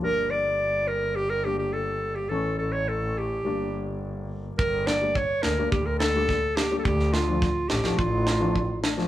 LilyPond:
<<
  \new Staff \with { instrumentName = "Clarinet" } { \time 4/4 \tempo 4 = 106 bes'8 d''4 bes'8 g'16 bes'16 g'16 g'16 a'8. g'16 | a'8 a'16 cis''16 a'8 g'4. r4 | bes'8 d''8 cis''8 bes'8 g'16 bes'16 a'4 g'16. a'32 | g'8 f'4 g'8 f'4. r8 | }
  \new Staff \with { instrumentName = "Upright piano" } { \time 4/4 <g bes d'>2~ <g bes d'>8 <g bes d'>4. | <e a cis'>2 <g bes d'>2 | r8 <bes d'>16 <g bes d'>16 r8 <bes d'>16 <g bes d'>16 r8 <bes d'>16 <g bes d'>16 r8 <bes d'>16 <g bes d'>16 | r8 <a d'>16 <f a d'>16 r8 <a cis'>16 <f a d'>16 r8 <a d'>16 <f a d'>16 r8 <a d'>16 <f a d'>16 | }
  \new Staff \with { instrumentName = "Double bass" } { \clef bass \time 4/4 g,,1 | a,,2 g,,2 | g,,4. d,8 d,2 | d,4. a,,8 a,,2 | }
  \new DrumStaff \with { instrumentName = "Drums" } \drummode { \time 4/4 r4 r4 r4 r4 | r4 r4 r4 r4 | bd8 sn8 bd8 sn8 bd8 sn8 <bd sn>8 sn8 | bd16 sn16 sn8 <bd sn>8 sn16 sn16 bd8 sn8 bd8 sn16 sn16 | }
>>